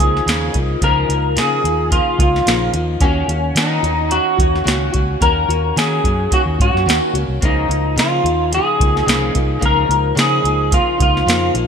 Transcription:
Already playing: clean electric guitar G#4
0.00 fingered electric bass C#2, nylon-string guitar F3 A#3 D#4, closed hi-hat
0.17 snare
0.26 fingered electric bass D#2, nylon-string guitar C#3 F3 A#3 D#4, snare, closed hi-hat
0.53 fingered electric bass C2, nylon-string guitar F3 A#3 D#4, kick, closed hi-hat
0.81 fingered electric bass C#2, nylon-string guitar C#3 F3 A#3 D#4, clean electric guitar A#4, kick, closed hi-hat
1.08 fingered electric bass C#2, nylon-string guitar F3 A#3 D#4, closed hi-hat
1.36 nylon-string guitar C#3 F3 A#3 D#4, fingered electric bass C#3, clean electric guitar G#4, snare, closed hi-hat
1.63 fingered electric bass D#2, nylon-string guitar F3 A#3 D#4, closed hi-hat
1.90 nylon-string guitar C#3 F3 A#3 D#4, clean electric guitar F4, kick, closed hi-hat
2.18 fingered electric bass C#2, nylon-string guitar F3 A#3 D#4, clean electric guitar F4, kick, closed hi-hat
2.36 snare
2.46 fingered electric bass A#1, nylon-string guitar C#3 F3 A#3 D#4, snare, closed hi-hat
2.73 fingered electric bass D#2, nylon-string guitar F3 A#3 D#4, closed hi-hat
3.00 fingered electric bass D#2, nylon-string guitar D#3 A#3 C#4 F#4, clean electric guitar C#4, kick, closed hi-hat
3.28 fingered electric bass D#2, nylon-string guitar A#3 C#4 F#4, closed hi-hat
3.55 nylon-string guitar D#3 A#3 C#4 F#4, fingered electric bass D#3, clean electric guitar D#4, snare, closed hi-hat
3.83 fingered electric bass D#2, nylon-string guitar A#3 C#4 F#4, closed hi-hat
4.08 nylon-string guitar D#3 A#3 C#4 F#4, clean electric guitar F#4, closed hi-hat
4.37 fingered electric bass D#2, nylon-string guitar A#3 C#4 F#4, kick, closed hi-hat
4.56 snare
4.64 fingered electric bass C#2, nylon-string guitar D#3 A#3 C#4 F#4, closed hi-hat
4.68 snare
4.92 fingered electric bass C#2, nylon-string guitar A#3 C#4 F#4, kick, closed hi-hat
5.20 fingered electric bass D#2, nylon-string guitar D#3 A#3 C#4 F#4, clean electric guitar A#4, kick, closed hi-hat
5.48 fingered electric bass D#2, nylon-string guitar A#3 C#4 F#4, closed hi-hat
5.76 nylon-string guitar D#3 A#3 C#4 F#4, fingered electric bass D#3, clean electric guitar G#4, snare, closed hi-hat
6.04 fingered electric bass F#2, nylon-string guitar A#3 C#4 F#4, kick, closed hi-hat
6.31 nylon-string guitar D#3 A#3 C#4 F#4, clean electric guitar F#4, kick, closed hi-hat
6.46 fingered electric bass D#2
6.58 fingered electric bass G#2, nylon-string guitar A#3 C#4 F#4, clean electric guitar F#4, kick, closed hi-hat
6.74 fingered electric bass F#2, snare
6.86 fingered electric bass D#2, nylon-string guitar D#3 A#3 C#4 F#4, closed hi-hat
6.90 snare
7.14 fingered electric bass C#2, nylon-string guitar A#3 C#4 F#4, closed hi-hat
7.28 fingered electric bass C2
7.41 fingered electric bass C#2, nylon-string guitar C#3 F3 A#3 D#4, kick, closed hi-hat
7.45 clean electric guitar D#4
7.68 fingered electric bass C#2, nylon-string guitar F3 A#3 D#4, closed hi-hat
7.96 nylon-string guitar C#3 F3 A#3 D#4, fingered electric bass C#3, clean electric guitar F4, snare, closed hi-hat
8.22 fingered electric bass D#2, nylon-string guitar F3 A#3 D#4, closed hi-hat
8.51 nylon-string guitar C#3 F3 A#3 D#4, clean electric guitar G#4, closed hi-hat
8.79 fingered electric bass C#2, nylon-string guitar F3 A#3 D#4, kick, closed hi-hat
8.97 snare
9.06 fingered electric bass C2, nylon-string guitar C#3 F3 A#3 D#4, snare, closed hi-hat
9.33 fingered electric bass C2, nylon-string guitar F3 A#3 D#4, kick, closed hi-hat
9.59 fingered electric bass C#2, nylon-string guitar C#3 F3 A#3 D#4, kick, closed hi-hat
9.66 clean electric guitar A#4
9.87 fingered electric bass C#2, nylon-string guitar F3 A#3 D#4
9.91 closed hi-hat
10.15 nylon-string guitar C#3 F3 A#3 D#4, fingered electric bass C#3, snare, closed hi-hat
10.20 clean electric guitar G#4
10.42 fingered electric bass C#2, nylon-string guitar F3 A#3 D#4, closed hi-hat
10.70 nylon-string guitar C#3 F3 A#3 D#4, clean electric guitar F4, kick, closed hi-hat
10.98 fingered electric bass C#2, nylon-string guitar F3 A#3 D#4, kick, closed hi-hat
11.02 clean electric guitar F4
11.17 snare
11.26 fingered electric bass F2, nylon-string guitar C#3 F3 A#3 D#4, snare, closed hi-hat
11.54 fingered electric bass A#1, nylon-string guitar F3 A#3 D#4, closed hi-hat

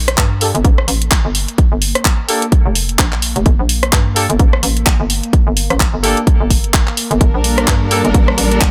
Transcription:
Already playing: fm bass A#1
0.08 cross-stick, closed hi-hat
0.18 fm bass G2, kick, clap, closed hi-hat
0.22 ambient pad A#3
0.41 horn section A#3 D4 G4 A4, open hi-hat
0.55 fm bass G1, closed hi-hat
0.65 fm bass A1, kick, closed hi-hat
0.78 cross-stick
0.88 fm bass A1, open hi-hat
1.02 closed hi-hat
1.11 kick, clap, closed hi-hat
1.25 fm bass G1
1.35 open hi-hat
1.48 closed hi-hat
1.58 kick, closed hi-hat
1.72 fm bass G1
1.82 open hi-hat
1.95 cross-stick, closed hi-hat
2.05 kick, clap, closed hi-hat
2.29 horn section A#3 D4 G4 A4, open hi-hat
2.42 closed hi-hat
2.52 kick, closed hi-hat
2.66 fm bass F1
2.75 open hi-hat
2.89 closed hi-hat
2.99 fm bass A#1, kick, clap, closed hi-hat
3.12 clap
3.22 open hi-hat
3.36 fm bass F1, closed hi-hat
3.46 fm bass G1, kick, closed hi-hat
3.59 fm bass A#1
3.69 open hi-hat
3.83 cross-stick, closed hi-hat
3.93 fm bass G2, kick, clap, closed hi-hat
4.16 horn section A#3 D4 G4 A4, open hi-hat
4.30 fm bass G1, closed hi-hat
4.39 fm bass A1, kick, closed hi-hat
4.53 cross-stick
4.63 fm bass A1, open hi-hat
4.77 closed hi-hat
4.86 kick, clap, closed hi-hat
5.00 fm bass G1
5.10 open hi-hat
5.23 closed hi-hat
5.33 kick, closed hi-hat
5.47 fm bass G1
5.57 open hi-hat
5.70 fm bass A1, cross-stick, closed hi-hat
5.80 kick, clap, closed hi-hat
5.94 fm bass G1
6.04 horn section A#3 D4 G4 A4, open hi-hat
6.17 closed hi-hat
6.27 kick, closed hi-hat
6.41 fm bass G1
6.50 kick, open hi-hat
6.64 closed hi-hat
6.74 kick, clap, closed hi-hat
6.87 clap
6.97 open hi-hat
7.11 fm bass G1, closed hi-hat
7.21 fm bass G1, string section G3 D4 A4 A#4, kick, closed hi-hat
7.34 fm bass A#1
7.44 open hi-hat
7.58 cross-stick, closed hi-hat
7.68 fm bass G2, kick, clap, closed hi-hat
7.91 horn section A#3 D4 G4 A4, open hi-hat
8.05 fm bass G1, closed hi-hat
8.14 fm bass A1, kick, closed hi-hat
8.28 cross-stick
8.38 fm bass A1, open hi-hat
8.52 closed hi-hat
8.61 kick, clap, closed hi-hat

